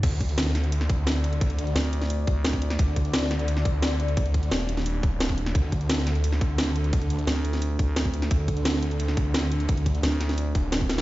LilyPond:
<<
  \new Staff \with { instrumentName = "Analog synth pad" } { \time 4/4 \key c \dorian \tempo 4 = 174 << { d''1~ | d''1~ | d''1~ | d''1 |
a'1~ | a'1~ | a'1~ | a'1 | } \\ { <a d'>1~ | <a d'>1~ | <a d'>1~ | <a d'>1~ |
<a d'>1~ | <a d'>1~ | <a d'>1~ | <a d'>1 | } >> }
  \new Staff \with { instrumentName = "Detuned saw bass" } { \clef bass \time 4/4 \key c \dorian d,4 d,2.~ | d,4 r2. | d,4 d,2.~ | d,4 ees,,2. |
d,4 d,2.~ | d,4 r2. | d,4 d,2.~ | d,4 r4. ees,,4. | }
  \new Staff \with { instrumentName = "FM bass" } { \clef bass \time 4/4 \key c \dorian r1 | r4 d,4. d,4. | r1 | r1 |
r1 | r4 d,4. d,4. | r1 | r4 d,4. r4. | }
  \new DrumStaff \with { instrumentName = "Drums" } \drummode { \time 4/4 <cymc hh bd>8 <hh bd>16 hh16 <hh sn>16 sn16 <hh sn>16 hh16 hh16 sn16 <hh bd>8 <hh sn>8 hh16 hh16 | <hh bd>16 hh16 hh16 hh16 <hh sn>8 hh16 <hh sn>16 hh8 <hh bd>8 <hh sn>16 bd16 hh16 <hh sn>16 | <hh bd>8 <hh bd>16 hh16 <hh sn>16 sn16 <hh sn>16 hh16 hh16 sn16 <hh bd>8 <hh sn>8 hh16 hh16 | <hh bd>16 hh16 <hh bd>16 hh16 <hh sn>8 hh16 <hh sn>16 hh8 <hh bd>8 <hh sn>16 bd16 hh16 <hh sn>16 |
<hh bd>8 <hh bd>16 hh16 <hh sn>16 sn16 <hh sn>16 hh16 hh16 sn16 <hh bd>8 <hh sn>8 hh16 hh16 | <hh bd>16 hh16 hh16 hh16 <hh sn>8 hh16 <hh sn>16 hh8 <hh bd>8 <hh sn>16 bd16 hh16 <hh sn>16 | <hh bd>8 <hh bd>16 hh16 <hh sn>16 sn16 hh16 hh16 hh16 sn16 <hh bd>8 <hh sn>8 hh16 hh16 | <hh bd>16 hh16 <hh bd>16 hh16 <hh sn>8 <hh sn>16 <hh sn>16 hh8 <hh bd>8 <hh sn>16 bd16 <hh sn>16 <hh sn>16 | }
>>